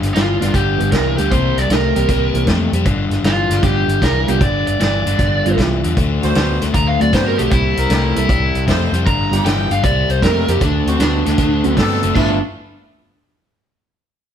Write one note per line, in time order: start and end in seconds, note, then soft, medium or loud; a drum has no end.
0.00 0.14 G1 medium
0.00 0.13 G2 medium
0.00 0.13 D3 medium
0.00 closed hi-hat medium
0.04 snare soft
0.15 0.39 G1 medium
0.15 0.39 G2 medium
0.15 0.39 E3 medium
0.15 0.52 F4 medium
0.15 snare loud
0.15 closed hi-hat medium
0.40 0.53 G1 medium
0.40 0.52 G2 medium
0.40 0.53 D3 medium
0.40 0.52 F3 medium
0.40 0.52 G3 medium
0.40 0.52 B3 medium
0.40 0.52 D4 medium
0.40 0.53 F4 medium
0.40 snare soft
0.40 closed hi-hat medium
0.54 0.78 G1 medium
0.54 0.90 G2 medium
0.54 0.90 D3 medium
0.54 0.91 G4 medium
0.54 kick loud
0.54 snare soft
0.54 closed hi-hat medium
0.78 0.92 G1 medium
0.78 1.28 F3 medium
0.78 1.28 G3 medium
0.78 1.28 B3 medium
0.78 1.28 D4 medium
0.78 1.29 G4 medium
0.78 closed hi-hat medium
0.92 1.16 C2 medium
0.92 1.16 G2 medium
0.92 1.16 E3 medium
0.92 1.17 A#4 medium
0.92 kick medium
0.92 snare loud
0.92 closed hi-hat medium
1.18 1.30 D2 medium
1.18 1.30 G2 medium
1.18 1.30 D3 medium
1.18 1.30 G4 medium
1.18 closed hi-hat medium
1.31 1.55 C2 medium
1.31 1.67 C3 medium
1.31 1.54 E3 medium
1.31 1.55 G3 medium
1.31 1.68 G3 medium
1.31 1.55 A#3 medium
1.31 1.55 C4 medium
1.31 1.55 E4 medium
1.31 1.58 C5 medium
1.31 kick loud
1.31 closed hi-hat medium
1.56 1.68 C2 medium
1.56 1.70 D5 medium
1.56 snare soft
1.56 closed hi-hat medium
1.69 1.94 C2 medium
1.69 1.93 C3 medium
1.69 1.94 A3 medium
1.69 2.46 A#4 medium
1.69 snare loud
1.69 closed hi-hat medium
1.95 2.08 C2 medium
1.95 2.07 C3 medium
1.95 2.31 E3 medium
1.95 2.31 G3 medium
1.95 2.07 G3 medium
1.95 2.32 A#3 medium
1.95 2.32 C4 medium
1.95 2.32 G4 medium
1.95 closed hi-hat medium
2.09 2.45 C3 medium
2.09 2.45 G3 medium
2.09 kick loud
2.09 closed hi-hat medium
2.34 2.46 C2 medium
2.34 2.83 E3 medium
2.34 2.83 G3 medium
2.34 2.84 A#3 medium
2.34 2.84 C4 medium
2.34 2.84 E4 medium
2.34 closed hi-hat medium
2.47 2.71 F2 medium
2.47 2.71 C3 medium
2.47 2.71 A3 medium
2.47 kick medium
2.47 snare loud
2.47 closed hi-hat medium
2.72 2.85 F2 medium
2.72 2.85 C3 medium
2.72 2.85 G3 medium
2.72 closed hi-hat medium
2.86 3.09 G1 medium
2.86 3.23 G2 medium
2.86 3.22 D3 medium
2.86 kick loud
2.86 closed hi-hat medium
3.10 3.22 G1 medium
3.10 snare soft
3.10 closed hi-hat medium
3.22 3.47 G1 medium
3.22 3.48 G2 medium
3.22 3.48 E3 medium
3.22 3.63 F4 medium
3.22 snare loud
3.22 closed hi-hat medium
3.49 3.62 G1 medium
3.49 3.62 G2 medium
3.49 3.62 D3 medium
3.49 snare soft
3.49 closed hi-hat medium
3.62 3.86 G1 medium
3.62 3.99 G2 medium
3.62 4.00 D3 medium
3.62 3.86 F3 medium
3.62 3.86 G3 medium
3.62 3.87 B3 medium
3.62 3.87 D4 medium
3.62 3.87 F4 medium
3.62 4.01 G4 medium
3.62 kick loud
3.62 snare soft
3.62 closed hi-hat medium
3.87 4.00 G1 medium
3.87 closed hi-hat medium
4.02 4.26 C2 medium
4.02 4.26 G2 medium
4.02 4.26 E3 medium
4.02 4.28 A#4 medium
4.02 kick medium
4.02 snare loud
4.02 closed hi-hat medium
4.27 4.40 C2 medium
4.27 4.39 G2 medium
4.27 4.40 D3 medium
4.27 4.39 F3 medium
4.27 4.39 G3 medium
4.27 4.40 B3 medium
4.27 4.40 D4 medium
4.27 4.40 F4 medium
4.27 4.41 G4 medium
4.27 closed hi-hat medium
4.40 4.65 G1 medium
4.40 4.77 G2 medium
4.40 4.77 D3 medium
4.40 4.66 D5 medium
4.40 kick loud
4.40 closed hi-hat medium
4.67 4.79 G1 medium
4.67 4.80 D5 medium
4.67 closed hi-hat medium
4.79 5.04 G1 medium
4.79 5.03 G2 medium
4.79 5.03 E3 medium
4.79 5.56 D5 medium
4.79 snare loud
4.79 closed hi-hat medium
5.06 5.18 G1 medium
5.06 5.17 G2 medium
5.06 5.18 D3 medium
5.06 closed hi-hat medium
5.19 5.43 G1 medium
5.19 5.55 G2 medium
5.19 5.55 D3 medium
5.19 kick loud
5.19 snare soft
5.19 closed hi-hat medium
5.45 5.57 G1 medium
5.45 5.94 F3 medium
5.45 5.94 G3 medium
5.45 5.94 B3 medium
5.45 5.94 D4 medium
5.45 5.95 F4 medium
5.45 closed hi-hat soft
5.57 5.82 C2 medium
5.57 5.81 G2 medium
5.57 5.81 E3 medium
5.57 kick medium
5.57 snare loud
5.57 closed hi-hat medium
5.83 5.96 E2 medium
5.83 5.95 G2 medium
5.83 5.95 D3 medium
5.83 closed hi-hat medium
5.96 6.21 D2 medium
5.96 6.33 D3 medium
5.96 6.33 A3 medium
5.96 kick loud
5.96 closed hi-hat medium
6.22 6.35 D2 medium
6.22 6.66 D4 medium
6.22 6.66 F#4 medium
6.22 6.66 C5 loud
6.22 snare soft
6.22 closed hi-hat medium
6.35 6.60 D2 medium
6.35 6.59 D3 medium
6.35 6.59 B3 medium
6.35 snare loud
6.35 closed hi-hat medium
6.61 6.73 D2 medium
6.61 6.72 D3 medium
6.61 6.73 A3 medium
6.61 snare soft
6.61 closed hi-hat medium
6.74 6.98 D2 medium
6.74 7.10 D3 medium
6.74 7.10 A3 medium
6.74 6.87 A#5 medium
6.74 kick loud
6.74 closed hi-hat medium
6.87 6.99 F5 medium
7.00 7.12 D2 medium
7.00 7.49 F#3 medium
7.00 7.49 A3 medium
7.00 7.49 C4 medium
7.00 7.49 D4 medium
7.00 7.50 F#4 medium
7.00 7.13 D5 medium
7.00 closed hi-hat medium
7.12 7.37 G2 medium
7.12 7.36 D3 medium
7.12 7.36 B3 loud
7.12 7.49 D4 medium
7.12 7.49 F#4 medium
7.12 7.49 C5 medium
7.12 7.26 C5 medium
7.12 kick medium
7.12 snare loud
7.12 closed hi-hat medium
7.27 7.39 A#4 medium
7.38 7.51 B1 medium
7.38 7.50 D3 medium
7.38 7.51 A3 medium
7.38 7.51 G4 medium
7.38 closed hi-hat medium
7.50 7.76 C2 medium
7.50 7.88 C3 medium
7.50 7.75 G3 soft
7.50 7.88 G3 medium
7.50 7.75 A#3 soft
7.50 7.75 C4 soft
7.50 8.64 E4 loud
7.50 7.75 E4 soft
7.50 7.76 G4 medium
7.50 kick loud
7.50 closed hi-hat medium
7.77 7.89 C2 medium
7.77 8.21 C4 medium
7.77 8.21 E4 medium
7.77 8.21 A#4 medium
7.77 closed hi-hat medium
7.90 8.14 C2 medium
7.90 8.14 C3 medium
7.90 8.14 A3 medium
7.90 snare loud
7.90 closed hi-hat medium
8.15 8.28 C2 medium
8.15 8.28 C3 medium
8.15 8.27 G3 medium
8.15 8.28 G3 medium
8.15 8.27 A#3 medium
8.15 8.28 C4 medium
8.15 8.28 E4 medium
8.15 8.28 A4 medium
8.15 closed hi-hat medium
8.29 8.53 C2 medium
8.29 8.65 C3 medium
8.29 8.65 G3 medium
8.29 kick loud
8.29 closed hi-hat medium
8.55 8.66 C2 medium
8.55 closed hi-hat soft
8.67 8.91 F2 medium
8.67 8.91 C3 medium
8.67 8.91 A3 medium
8.67 9.04 C4 medium
8.67 9.04 E4 medium
8.67 9.04 C5 medium
8.67 kick medium
8.67 snare loud
8.67 closed hi-hat medium
8.92 9.04 F2 medium
8.92 9.05 C3 medium
8.92 9.05 G3 medium
8.92 closed hi-hat medium
9.06 9.30 G1 medium
9.06 9.43 G2 medium
9.06 9.43 D3 medium
9.06 9.44 A#5 medium
9.06 kick loud
9.06 closed hi-hat medium
9.31 9.44 G1 medium
9.31 9.43 G3 medium
9.31 9.43 B3 medium
9.31 9.76 B3 medium
9.31 9.43 D4 medium
9.31 9.44 F4 medium
9.31 9.76 F4 medium
9.31 9.76 G4 medium
9.31 9.44 G4 medium
9.31 snare soft
9.31 closed hi-hat medium
9.44 9.69 G1 medium
9.44 9.68 G2 medium
9.44 9.69 E3 medium
9.44 9.71 G5 medium
9.44 snare loud
9.44 closed hi-hat medium
9.71 9.83 G1 medium
9.71 9.82 G2 medium
9.71 9.83 D3 medium
9.71 9.83 F5 medium
9.71 closed hi-hat medium
9.83 10.08 C2 medium
9.83 10.19 C3 medium
9.83 10.20 G3 medium
9.83 10.10 D5 medium
9.83 kick loud
9.83 snare soft
9.83 closed hi-hat medium
10.08 10.21 C2 medium
10.08 10.22 C5 medium
10.08 closed hi-hat medium
10.21 10.46 F2 medium
10.21 10.46 C3 medium
10.21 10.60 G3 medium
10.21 10.46 A3 medium
10.21 10.61 A#3 medium
10.21 10.61 C4 medium
10.21 10.59 C4 medium
10.21 10.61 E4 medium
10.21 10.59 E4 medium
10.21 10.61 G4 medium
10.21 10.48 A#4 medium
10.21 10.59 A#4 medium
10.21 kick medium
10.21 snare loud
10.21 closed hi-hat medium
10.48 10.60 F2 medium
10.48 10.60 C3 medium
10.48 10.60 G3 medium
10.48 10.61 G4 medium
10.48 closed hi-hat medium
10.61 10.85 D2 medium
10.61 10.98 D3 medium
10.61 10.98 A3 medium
10.61 10.89 D4 medium
10.61 kick loud
10.61 closed hi-hat medium
10.86 10.98 D2 medium
10.86 11.31 C4 medium
10.86 11.00 C4 medium
10.86 11.31 D4 medium
10.86 11.31 F#4 medium
10.86 closed hi-hat medium
10.99 11.24 D2 medium
10.99 11.23 D3 medium
10.99 11.23 B3 medium
10.99 11.75 D4 medium
10.99 snare loud
10.99 closed hi-hat medium
11.26 11.37 D2 medium
11.26 11.37 D3 medium
11.26 11.37 A3 medium
11.26 snare soft
11.26 closed hi-hat medium
11.38 11.62 D2 medium
11.38 11.75 D3 medium
11.38 11.75 A3 medium
11.38 kick loud
11.38 snare soft
11.38 closed hi-hat medium
11.63 11.76 D2 medium
11.63 12.12 F#3 medium
11.63 12.13 A3 medium
11.63 12.13 C4 medium
11.63 12.13 D4 medium
11.63 12.13 F#4 medium
11.63 closed hi-hat soft
11.76 12.01 G2 medium
11.76 12.00 D3 medium
11.76 12.00 B3 medium
11.76 12.13 C4 medium
11.76 12.13 D4 medium
11.76 12.14 A4 loud
11.76 kick medium
11.76 snare loud
11.76 closed hi-hat medium
12.03 12.15 F#1 medium
12.03 12.14 D3 medium
12.03 12.15 A3 medium
12.03 closed hi-hat medium
12.14 12.40 G1 medium
12.14 12.36 G2 medium
12.14 12.37 F3 medium
12.14 12.38 G3 medium
12.14 12.38 A3 medium
12.14 12.39 A3 medium
12.14 12.38 B3 medium
12.14 12.40 B3 medium
12.14 12.37 B3 loud
12.14 12.40 D4 medium
12.14 12.39 E4 medium
12.14 12.37 E4 loud
12.14 12.39 F4 medium
12.14 kick loud
12.14 crash medium